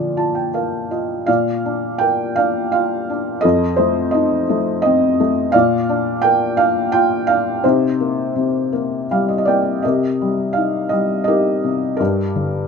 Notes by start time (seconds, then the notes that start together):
Already playing: A#2 D3 F3 D5
0.17 F4 A5
0.35 G5
0.54 A#4 F5
0.91 F4 D#5
1.26 A#2 D5 F5
1.66 D4
1.98 A#4 G5
2.36 D4 F5
2.72 F4 F5
3.10 D4
3.41 F2 A4 D#5
3.76 A3 C5
4.11 D#4 D#5
4.49 A3
4.82 C4 D#5
5.20 A3
5.52 A#2 D5 F5
5.89 D4
6.22 A#4 G5
6.57 D4 F5
6.92 F4 G5
7.27 D4 F5
7.64 C3 D#4 C5
8.00 A#3
8.36 C3
8.73 A#3
9.11 G3 F5
9.29 D#5
9.38 D#5
9.45 A#3 D5 G5
9.83 C3 G4 A#4 D#5
10.21 G3
10.53 D#4 F5
10.89 G3 D#5
11.24 D#4 G4 A#4 D#5
11.64 C3
11.97 G2 G4 A#4
12.01 D4
12.36 D3